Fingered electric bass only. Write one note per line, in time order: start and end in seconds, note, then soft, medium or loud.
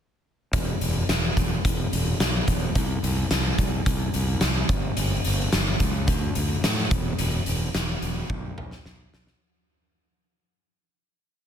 0.53 0.73 E1 medium
0.81 1.01 E1 medium
1.09 1.29 E1 medium
1.37 1.57 E1 medium
1.65 1.85 E1 medium
1.93 2.13 E1 medium
2.21 2.40 B1 medium
2.48 2.68 E1 medium
2.75 2.95 C2 medium
3.03 3.23 C2 medium
3.31 3.51 C2 medium
3.58 3.78 C2 medium
3.86 4.06 C2 medium
4.15 4.34 C2 medium
4.42 4.62 C2 medium
4.69 4.89 G1 medium
4.98 5.17 G1 medium
5.26 5.45 G1 medium
5.54 5.73 G1 medium
5.80 6.08 C#2 medium
6.08 6.28 D2 medium
6.36 6.56 D2 medium
6.64 6.84 A2 medium
6.91 7.11 E1 medium
7.19 7.39 E1 medium
7.47 7.67 E1 medium
7.75 7.95 E1 medium
8.02 8.22 E1 medium
8.30 8.50 B1 medium
8.58 8.78 B1 medium
8.86 9.06 B1 medium
9.14 9.34 B1 medium